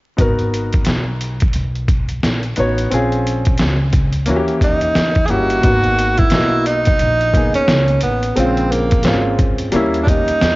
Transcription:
0.17 upright bass G#1, grand piano B3 D#4 F#4 A#4, kick, closed hi-hat
0.39 closed hi-hat
0.54 closed hi-hat
0.73 kick, closed hi-hat
0.85 upright bass B1, snare, closed hi-hat
1.21 closed hi-hat
1.40 kick, closed hi-hat
1.53 upright bass B1, closed hi-hat
1.76 closed hi-hat
1.88 kick, closed hi-hat
2.09 closed hi-hat
2.23 upright bass A#1, snare, closed hi-hat
2.43 closed hi-hat
2.56 upright bass A1, grand piano B3 D#4 F#4 C#5, closed hi-hat
2.78 closed hi-hat
2.90 upright bass A#1, grand piano C4 C#4 F4 G#4, closed hi-hat
3.12 closed hi-hat
3.26 closed hi-hat
3.45 kick, closed hi-hat
3.58 upright bass C#2, snare, closed hi-hat
3.93 kick, closed hi-hat
4.13 closed hi-hat
4.26 upright bass D#2, grand piano E3 A#3 C#4 F#4, closed hi-hat
4.36 grand piano G4
4.48 closed hi-hat
4.61 tenor saxophone D#4, kick, closed hi-hat
4.81 closed hi-hat
4.95 upright bass E2, snare, closed hi-hat
5.15 kick, closed hi-hat
5.26 upright bass G1, grand piano A#3 C#4, tenor saxophone G#4, closed hi-hat
5.30 grand piano E4 G4, tenor saxophone F#4
5.50 closed hi-hat
5.62 upright bass G#1, grand piano A#3 B3 D#4 F#4, kick, closed hi-hat
5.84 closed hi-hat
5.99 closed hi-hat
6.18 tenor saxophone E4, kick, closed hi-hat
6.30 upright bass B1, grand piano A#3 B3 D#5, snare, closed hi-hat
6.34 grand piano F#4
6.66 tenor saxophone D#4, closed hi-hat
6.85 kick, closed hi-hat
6.99 upright bass A#1, closed hi-hat
7.21 closed hi-hat
7.34 grand piano A#3 B3 D#4 G#4, kick, closed hi-hat
7.54 tenor saxophone C#4, muted upright bass stroke, closed hi-hat
7.68 upright bass C#2, snare, closed hi-hat
7.88 closed hi-hat
8.01 upright bass A1, tenor saxophone B3, closed hi-hat
8.23 closed hi-hat
8.35 upright bass A#1, grand piano C#3 G#3 C4 F4, tenor saxophone C4, closed hi-hat
8.57 closed hi-hat
8.71 tenor saxophone A#3, closed hi-hat
8.91 kick, closed hi-hat
9.03 upright bass G#1, grand piano G#3 C4 C#4, snare, closed hi-hat
9.08 grand piano F4
9.39 kick, closed hi-hat
9.58 closed hi-hat
9.72 upright bass D#2, grand piano G3 A#3 C#4 E4, closed hi-hat
9.94 closed hi-hat
10.03 grand piano G3, tenor saxophone D4, kick
10.07 grand piano A#3 C#4 G4, tenor saxophone D#4, closed hi-hat
10.28 muted upright bass stroke, closed hi-hat
10.41 upright bass E2, snare, closed hi-hat

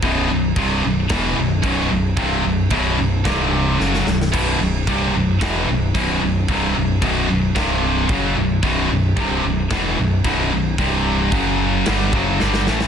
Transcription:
0.02 picked electric bass B0, distorted electric guitar B1 F#2 B2, kick, crash
0.29 picked electric bass B0, distorted electric guitar B1 F#2
0.56 picked electric bass C1, distorted electric guitar C2 G2 C3, kick, crash
0.84 picked electric bass B0, distorted electric guitar B1 F#2
1.09 picked electric bass E1, distorted electric guitar E2 B2 E3, kick, snare, crash
1.37 picked electric bass B0, distorted electric guitar B1 F#2
1.63 picked electric bass B0, distorted electric guitar B1 F#2 B2, kick, crash
1.91 picked electric bass B0, distorted electric guitar B1 F#2
2.17 picked electric bass C1, distorted electric guitar C2 G2 C3, kick, crash
2.44 picked electric bass B0, distorted electric guitar B1 F#2
2.70 picked electric bass B0, distorted electric guitar B1 F#2 B2, kick, crash
2.98 picked electric bass B0, distorted electric guitar B1 F#2
3.25 picked electric bass C1, distorted electric guitar C2 G2 C3, kick, snare, crash
3.79 picked electric bass F#1, distorted electric guitar F#2 C#3 F#3, snare
3.94 snare
4.06 picked electric bass B0, distorted electric guitar B1 F#2, snare
4.22 snare
4.32 picked electric bass B0, distorted electric guitar B1 F#2 B2, kick, crash
4.59 picked electric bass B0, distorted electric guitar B1 F#2
4.87 picked electric bass C1, distorted electric guitar C2 G2 C3, kick, crash
5.14 picked electric bass B0, distorted electric guitar B1 F#2
5.41 picked electric bass E1, distorted electric guitar E2 B2 E3, kick, snare, crash
5.68 picked electric bass B0, distorted electric guitar B1 F#2
5.95 picked electric bass B0, distorted electric guitar B1 F#2 B2, kick, crash
6.22 picked electric bass B0, distorted electric guitar B1 F#2
6.48 picked electric bass C1, distorted electric guitar C2 G2 C3, kick, crash
6.75 picked electric bass B0, distorted electric guitar B1 F#2
7.02 picked electric bass B0, distorted electric guitar B1 F#2 B2, kick, crash
7.29 picked electric bass B0, distorted electric guitar B1 F#2
7.55 picked electric bass C1, distorted electric guitar C2 G2 C3, kick, snare, crash
8.09 picked electric bass F#1, distorted electric guitar F#2 C#3 F#3, kick, crash
8.37 picked electric bass B0, distorted electric guitar B1 F#2
8.63 picked electric bass B0, distorted electric guitar B1 F#2 B2, kick, crash
8.90 picked electric bass B0, distorted electric guitar B1 F#2
9.17 picked electric bass C1, distorted electric guitar C2 G2 C3, kick, crash
9.45 picked electric bass B0, distorted electric guitar B1 F#2
9.70 picked electric bass E1, distorted electric guitar E2 B2 E3, kick, snare, crash
9.98 picked electric bass B0, distorted electric guitar B1 F#2
10.24 picked electric bass B0, distorted electric guitar B1 F#2 B2, kick, crash
10.52 picked electric bass B0, distorted electric guitar B1 F#2
10.78 picked electric bass C1, distorted electric guitar C2 G2 C3, kick, crash
11.32 picked electric bass F#1, distorted electric guitar F#2 C#3 F#3, kick, crash
11.86 picked electric bass G1, distorted electric guitar G2 D3 G3, snare, crash
12.13 picked electric bass F#1, distorted electric guitar F#2 C#3 F#3, kick
12.39 picked electric bass G1, distorted electric guitar G2 D3 G3, snare
12.54 snare
12.67 picked electric bass A1, distorted electric guitar A2 E3 A3, snare
12.80 snare

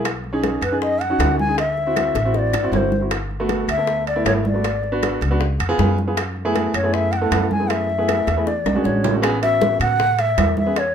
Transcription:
Already playing: upright bass B1
0.05 high bongo, high conga, high timbale, claves
0.24 high conga
0.33 grand piano C#4 D#4 G#4
0.43 high bongo, high conga, high timbale, low timbale
0.61 upright bass F#2, bansuri B4, high conga, high timbale, claves
0.72 grand piano C#4 D#4 G#4
0.82 bansuri D#5, high bongo, high conga
1.01 bansuri F#5, high conga, high timbale
1.10 grand piano C#4 D#4 F#4
1.19 upright bass D2, high bongo, low bongo, high conga, high timbale, low timbale, claves
1.39 bansuri G#5, high conga
1.48 grand piano C#4 D#4 G#4
1.58 bansuri E5, high bongo, high timbale
1.77 high bongo, high conga
1.87 grand piano C4 E4 F#4
1.96 high bongo, high conga, high timbale, low timbale, claves
2.15 upright bass A1, high bongo, high conga, high timbale
2.25 grand piano C4 E4 F#4
2.34 bansuri D#5, high bongo, high conga
2.39 bansuri D5
2.53 upright bass G#1, low bongo, high conga, high timbale, claves
2.63 grand piano C4 E4 F#4
2.72 upright bass G1, bansuri C#5, low bongo, high conga, low timbale
2.77 bansuri C5
2.92 low bongo, high conga
3.01 grand piano C4 E4 F#4
3.11 high bongo, high timbale, claves
3.31 high conga
3.40 grand piano A3 B3 F#4
3.49 high bongo, high conga, high timbale, low timbale
3.68 upright bass D2, bansuri E5, high conga, high timbale, claves
3.78 grand piano A3 B3 A4
3.87 high bongo, high conga
4.07 bansuri D5, high conga, high timbale
4.16 grand piano A3 B3 E4
4.25 upright bass G#1, bansuri C#5, high bongo, low bongo, high conga, high timbale, low timbale, claves
4.45 bansuri D5, high conga
4.54 grand piano A3 B3 F#4
4.64 high bongo, high timbale
4.83 high bongo, high conga
4.92 grand piano B3 D4 F#4
5.03 high bongo, high conga, high timbale, low timbale, claves
5.21 upright bass C#2, high bongo, high conga, high timbale
5.31 grand piano B3 D4 F#4
5.41 high bongo, high conga
5.59 upright bass F2, high bongo, high conga, high timbale, claves
5.69 grand piano B3 F4 G#4
5.79 upright bass F#2, high bongo, low bongo, high conga, low timbale
5.98 high conga
6.07 grand piano B3 F4 G#4
6.17 high bongo, high timbale, claves
6.36 high conga
6.45 grand piano A3 B3 E4 G#4
6.55 high bongo, high conga, high timbale, low timbale
6.74 upright bass F#2, bansuri C#5, high conga, high timbale, claves
6.83 grand piano A3 B3 E4 G#4
6.94 bansuri E5, high bongo, high conga
7.12 bansuri G5, high conga, high timbale
7.17 bansuri F#5
7.21 grand piano A3 B3 E4 A4
7.31 upright bass F#2, high bongo, low bongo, high conga, high timbale, low timbale, claves
7.51 bansuri G#5, high conga
7.60 grand piano A3 B3 E4 G#4
7.70 bansuri E5, high bongo, high timbale
7.89 high bongo, high conga
7.98 grand piano A3 B3 E4 G#4
8.08 high bongo, high conga, high timbale, low timbale, claves
8.27 upright bass E2, high bongo, high conga, high timbale
8.37 grand piano A3 B3 E4 G#4
8.47 bansuri D5, high bongo, high conga
8.65 upright bass B1, high bongo, high conga, high timbale, claves
8.75 grand piano G#3 C#4 D4 F#4
8.84 upright bass A1, bansuri C#5, low bongo, high conga
9.04 low bongo, low conga, low timbale
9.13 grand piano G#3 C#4 D4 F#4
9.22 grand piano B3 C#4 G#4, high bongo, high conga, high timbale, claves
9.42 grand piano B3 C#4 F#4, bansuri E5, high bongo, high conga, high timbale
9.61 high bongo, high conga, low timbale
9.80 upright bass A2, bansuri F#5, high conga, low conga, high timbale, claves
9.99 high bongo, high conga, low conga
10.19 bansuri E5, high bongo, high conga, high timbale
10.37 upright bass E2, high bongo, low bongo, high conga, high timbale, low timbale, claves
10.57 bansuri E5, high bongo, high conga
10.66 grand piano B3 C#4 G#4
10.76 bansuri C#5, high bongo, high timbale

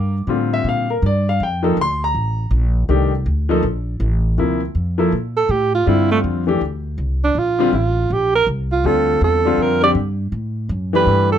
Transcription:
Already playing: upright bass G2, grand piano A#4 F5 G5 A#5
0.27 upright bass A2, grand piano D3 G3 C4 F4
0.54 grand piano E5
0.64 upright bass A#2
0.69 grand piano F5
0.90 grand piano A#4
1.02 upright bass G2, grand piano D5
1.29 grand piano F5
1.40 upright bass F2, grand piano G5
1.63 grand piano F3 A#3 D#4 A4
1.77 upright bass D2
1.81 grand piano C6
2.04 grand piano A#5
2.14 upright bass A1
2.51 upright bass A#1
2.89 upright bass C2, grand piano D#3 A3 D4 G4
3.26 upright bass D2
3.49 grand piano F3 A#3 D#4 A4
3.63 upright bass A#1
4.00 upright bass A1
4.38 upright bass D2, grand piano C3 F3 A#3 E4
4.75 upright bass F2
4.98 grand piano F3 A#3 E4 A4
5.12 upright bass A#2
5.37 alto saxophone A4
5.49 upright bass A2, alto saxophone G4
5.75 alto saxophone F4
5.86 upright bass G2, grand piano D3 G3 C4 F4, alto saxophone E4
6.12 alto saxophone A3
6.24 upright bass F2
6.47 grand piano E3 A3 D4 G4
6.61 upright bass D2
6.98 upright bass C2
7.24 alto saxophone D4
7.35 upright bass A#1, alto saxophone F4
7.59 grand piano D3 G3 C4 F4
7.73 upright bass A1, alto saxophone F4
8.10 upright bass A#1, alto saxophone G4
8.35 alto saxophone A#4
8.47 upright bass C2
8.72 alto saxophone F4
8.84 upright bass D2, grand piano D3 G3 C4 F4, alto saxophone A4
9.21 upright bass E2, alto saxophone A4
9.45 grand piano D3 G3 C4 F4
9.57 upright bass F2
9.62 alto saxophone A#4
9.82 grand piano D3 G3 C4 G4, alto saxophone D5
9.95 upright bass G2
10.32 upright bass A2
10.69 upright bass F#2
10.93 grand piano E3 A3 D4 G4, alto saxophone B4
11.06 upright bass G2
11.32 alto saxophone A4

